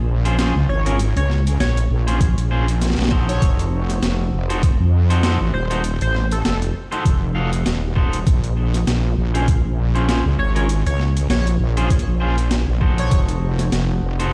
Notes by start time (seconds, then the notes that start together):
Already playing: A#1
0.25 C#4 F4 G#4 C5, closed hi-hat
0.38 C#4 F4 G#4 C5, snare, closed hi-hat
0.56 C#2
0.69 G#1 C#5
0.86 C#4 F4 G#4 A#4 C#5, closed hi-hat
0.99 closed hi-hat
1.16 C#2 C#5, closed hi-hat
1.30 snare
1.47 closed hi-hat
1.60 A#1 C#5, snare, closed hi-hat
1.77 closed hi-hat
1.90 A#1
2.07 C#4 F4 G#4 C5, closed hi-hat
2.21 kick, closed hi-hat
2.37 A#1, closed hi-hat
2.51 C#4 F4 G#4 C5
2.68 closed hi-hat
2.81 snare, closed hi-hat
2.86 snare
2.90 snare
2.95 A#1, snare
2.99 snare
3.02 snare
3.05 snare
3.09 F#4 A4 C5, kick, snare
3.13 D#4
3.29 C#5, closed hi-hat
3.42 F1, kick, closed hi-hat
3.59 closed hi-hat
3.90 snare, closed hi-hat
4.02 F1, snare, closed hi-hat
4.33 F1
4.49 D#4 F#4 A4 C5, closed hi-hat
4.63 kick, closed hi-hat
4.80 F2
5.10 D#4 F#4 A4 C5, closed hi-hat
5.23 D#4 F#4 A4 C5, snare, closed hi-hat
5.41 A1
5.54 D#1 C5
5.70 D#4 F#4 A4 C5, closed hi-hat
5.84 closed hi-hat
6.01 A1 C5, closed hi-hat
6.15 snare
6.31 A4, closed hi-hat
6.44 F1 A4, snare, closed hi-hat
6.62 closed hi-hat
6.92 D#4 F#4 A4 C5, closed hi-hat
7.05 F1, kick, closed hi-hat
7.35 D#4 F#4 A4 F5
7.53 closed hi-hat
7.66 D#1, snare, closed hi-hat
7.96 D#4 F#4 A4 C5, kick
8.13 closed hi-hat
8.27 A#1, kick, closed hi-hat
8.44 closed hi-hat
8.74 snare, closed hi-hat
8.87 A#1, snare, closed hi-hat
9.17 A#1
9.34 C#4 F4 G#4 C5, closed hi-hat
9.48 kick, closed hi-hat
9.65 A#1
9.95 C#4 F4 G#4 C5, closed hi-hat
10.08 C#4 F4 G#4 C5, snare, closed hi-hat
10.25 C#2
10.38 G#1 C#5
10.55 C#4 F4 G#4 A#4 C#5, closed hi-hat
10.69 closed hi-hat
10.86 C#2 C#5, closed hi-hat
11.00 snare
11.17 closed hi-hat
11.29 A#1 C#5, snare, closed hi-hat
11.47 closed hi-hat
11.60 A#1
11.77 C#4 F4 G#4 C5, closed hi-hat
11.90 kick, closed hi-hat
11.99 closed hi-hat
12.07 A#1
12.20 C#4 F4 G#4 C5
12.38 closed hi-hat
12.51 snare, closed hi-hat
12.68 A#1
12.81 D#4 F#4 A4 C5, kick
12.98 C#5, closed hi-hat
13.11 F1, kick, closed hi-hat
13.29 closed hi-hat
13.59 snare, closed hi-hat
13.72 F1, snare, closed hi-hat
14.02 F1
14.19 D#4 F#4 A4 C5, closed hi-hat